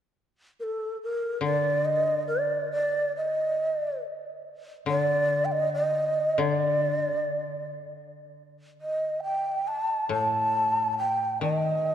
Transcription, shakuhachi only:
0.60 0.98 A4 medium
0.60 0.65 A#4 medium
1.03 1.42 A#4 medium
1.43 1.86 D5 medium
1.85 2.27 D#5 medium
2.28 2.69 D5 medium
2.72 3.13 D5 medium
3.17 3.98 D#5 medium
4.89 5.46 D5 medium
5.45 5.53 G5 soft
5.52 5.73 D#5 medium
5.74 6.40 D#5 medium
6.38 7.69 D5 medium
8.81 9.21 D#5 medium
9.24 9.69 G5 medium
9.68 10.11 A5 medium
10.12 10.95 A5 medium
10.99 11.39 G5 medium
11.42 11.95 D#5 medium

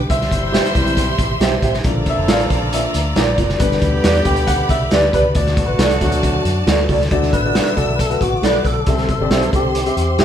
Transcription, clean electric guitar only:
0.52 0.65 G4 medium
0.52 0.65 C5 medium
0.52 0.66 E5 loud
1.41 1.53 G4 loud
1.41 1.53 C5 medium
1.41 1.54 E5 loud
1.63 1.72 G4 medium
1.63 1.72 C5 medium
1.63 1.73 E5 medium
2.28 2.40 F4 medium
2.28 2.41 A#4 loud
2.28 2.41 D5 medium
3.16 3.28 F4 loud
3.16 3.28 A#4 loud
3.16 3.29 D5 loud
3.38 3.47 F4 medium
3.38 3.48 A#4 medium
3.38 3.48 D5 medium
4.04 4.16 G4 medium
4.04 4.16 B4 loud
4.04 4.17 D5 loud
4.91 5.03 G4 loud
4.91 5.04 B4 loud
4.91 5.04 D5 loud
5.13 5.23 G4 medium
5.13 5.23 B4 medium
5.13 5.24 D5 medium
5.79 5.91 F#4 medium
5.79 5.92 A4 loud
5.79 5.92 D5 loud
6.67 6.79 F#4 loud
6.67 6.80 A4 medium
6.67 6.80 D5 medium
6.89 6.99 F#4 medium
6.89 6.99 A4 medium
6.89 7.00 D5 medium
7.54 7.67 F#4 medium
7.54 7.67 A4 medium
7.54 7.68 D5 medium
8.42 8.55 F#4 loud
8.42 8.55 A4 loud
8.42 8.56 D5 loud
9.30 9.43 G4 medium
9.30 9.43 C5 medium
9.30 9.44 E5 medium
10.19 10.25 G4 medium
10.19 10.25 C5 medium
10.19 10.25 E5 loud

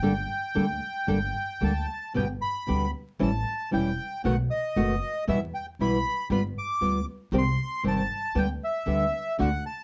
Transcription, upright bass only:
0.03 0.25 G1 medium
0.55 0.77 D2 medium
1.08 1.30 G1 medium
1.62 1.85 D2 medium
2.16 2.38 G1 medium
2.69 2.91 D2 medium
3.21 3.43 A1 medium
3.73 3.95 E1 medium
4.25 4.47 B1 medium
4.76 4.98 F#1 medium
5.28 5.50 E2 medium
5.79 6.01 B1 medium
6.30 6.52 G1 medium
6.81 7.03 D2 medium
7.32 7.54 C2 medium
7.84 8.06 G1 medium
8.35 8.57 D2 medium
8.87 9.09 D2 medium
9.40 9.62 D2 medium

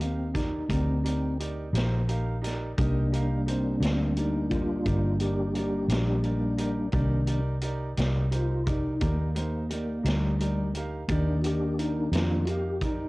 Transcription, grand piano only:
0.00 0.26 D#4 soft
0.00 0.26 G4 soft
0.00 0.26 A#4 soft
0.00 0.26 F5 medium
0.34 0.60 D#4 soft
0.34 0.61 G4 soft
0.34 0.61 A#4 soft
0.34 0.61 D5 medium
0.69 0.95 D#4 soft
0.69 0.95 G4 soft
0.69 0.96 A#4 soft
0.69 0.96 D5 medium
1.03 1.30 D#4 soft
1.03 1.30 G4 soft
1.03 1.30 A#4 soft
1.03 1.31 D5 medium
1.39 1.65 D#4 soft
1.39 1.65 G4 soft
1.39 1.66 A#4 soft
1.39 1.66 D5 medium
1.73 1.99 D#4 medium
1.73 2.00 G4 medium
1.73 2.00 A#4 medium
1.73 2.00 C5 medium
2.08 2.34 D#4 medium
2.08 2.34 G4 medium
2.08 2.34 A#4 medium
2.08 2.35 F5 medium
2.42 2.68 D#4 medium
2.42 2.68 G4 medium
2.42 2.69 A#4 medium
2.42 2.69 D5 medium
2.77 3.03 D#4 medium
2.77 3.04 G4 medium
2.77 3.04 A#4 medium
2.77 3.04 D#5 medium
3.12 3.38 D#4 medium
3.12 3.38 G4 medium
3.12 3.38 A#4 medium
3.12 3.39 F5 medium
3.46 3.72 D#4 soft
3.46 3.73 G4 soft
3.46 3.73 A#4 soft
3.46 3.73 C5 medium
3.80 4.07 D#4 medium
3.80 4.07 G4 soft
3.80 4.07 A#4 soft
3.80 4.07 D5 medium
4.17 4.42 D#4 soft
4.17 4.43 G4 soft
4.17 4.43 A#4 soft
4.17 4.43 D5 medium
4.52 4.77 D#4 medium
4.52 4.78 G4 soft
4.52 4.78 A#4 soft
4.52 4.78 D5 medium
4.85 5.11 D#4 medium
4.85 5.11 G4 soft
4.85 5.11 A#4 soft
4.85 5.12 D5 medium
5.20 5.46 D#4 medium
5.20 5.46 G4 soft
5.20 5.46 A#4 soft
5.20 5.47 D5 medium
5.55 5.81 D#4 soft
5.55 5.81 G4 soft
5.55 5.81 A#4 soft
5.55 5.82 D5 medium
5.89 6.15 D#4 soft
5.89 6.15 G4 soft
5.89 6.16 A#4 soft
5.89 6.16 D5 medium
6.24 6.50 D#4 medium
6.24 6.50 G4 soft
6.24 6.50 A#4 soft
6.24 6.50 D5 medium
6.58 6.84 D#4 medium
6.58 6.84 G4 medium
6.58 6.85 A#4 medium
6.58 6.85 D5 medium
6.92 7.18 D#4 medium
6.92 7.19 G4 medium
6.92 7.19 A#4 medium
6.92 7.19 D5 medium
7.27 7.53 D#4 medium
7.27 7.53 G4 medium
7.27 7.54 A#4 medium
7.27 7.54 D5 medium
7.62 7.88 D#4 medium
7.62 7.88 G4 medium
7.62 7.88 A#4 medium
7.62 7.89 D5 medium
7.97 8.23 D#4 medium
7.97 8.23 G4 medium
7.97 8.23 A#4 medium
7.97 8.23 D5 medium
8.31 8.57 D#4 medium
8.31 8.57 G4 soft
8.31 8.57 A#4 soft
8.31 8.58 C5 medium
8.66 8.92 D#4 medium
8.66 8.92 G4 soft
8.66 8.93 A#4 soft
8.66 8.92 D5 medium
9.00 9.26 D#4 medium
9.00 9.27 G4 soft
9.00 9.27 A#4 soft
9.00 9.27 D5 medium
9.35 9.61 D#4 medium
9.35 9.61 G4 soft
9.35 9.62 A#4 soft
9.35 9.62 C5 medium
9.69 9.96 D#4 soft
9.69 9.96 G4 soft
9.69 9.96 A#4 soft
9.69 9.97 D5 medium
10.03 10.30 D#4 soft
10.03 10.30 G4 soft
10.03 10.31 A#4 soft
10.03 10.31 D5 soft
10.39 10.65 D#4 medium
10.39 10.66 G4 soft
10.39 10.66 A#4 medium
10.39 10.66 D5 medium
10.75 11.01 D#4 soft
10.75 11.01 G4 soft
10.75 11.01 A#4 soft
10.75 11.01 F5 medium
11.09 11.35 D#4 medium
11.09 11.35 G4 medium
11.09 11.36 A#4 medium
11.09 11.36 D5 medium
11.44 11.70 D#4 medium
11.44 11.70 G4 soft
11.44 11.70 A#4 soft
11.44 11.70 D5 medium
11.78 12.04 D#4 soft
11.78 12.04 G4 soft
11.78 12.05 A#4 soft
11.78 12.05 D5 medium
12.12 12.38 D#4 soft
12.12 12.38 G4 soft
12.12 12.38 A#4 soft
12.12 12.39 D5 medium
12.48 12.73 D#4 medium
12.48 12.74 G4 soft
12.48 12.74 A#4 soft
12.48 12.74 F5 medium
12.82 13.08 D#4 medium
12.82 13.08 G4 soft
12.82 13.09 A#4 soft
12.82 13.09 D5 medium

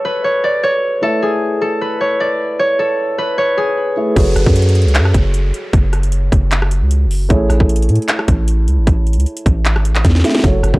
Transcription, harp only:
0.00 1.02 A4 medium
0.00 0.24 C#5 loud
0.05 1.81 B4 medium
0.24 0.50 C#5 medium
0.44 0.69 D5 medium
0.63 2.00 C#5 medium
1.03 1.28 A4 loud
1.22 1.67 G#4 medium
1.61 2.79 A4 medium
1.81 3.18 B4 medium
2.01 2.26 C#5 medium
2.20 2.65 D5 medium
2.59 3.38 C#5 medium
2.79 3.63 A4 medium
3.18 5.23 B4 medium
3.38 5.29 C#5 medium
3.57 5.85 G#4 medium

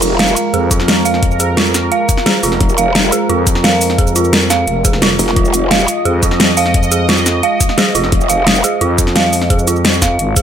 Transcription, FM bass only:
0.54 1.90 F2 medium
2.43 2.59 F1 loud
3.30 4.66 F2 loud
4.67 5.18 F1 loud
6.05 7.42 F2 loud
7.95 8.11 F1 loud
8.81 10.18 F2 loud
10.19 10.35 G#1 loud

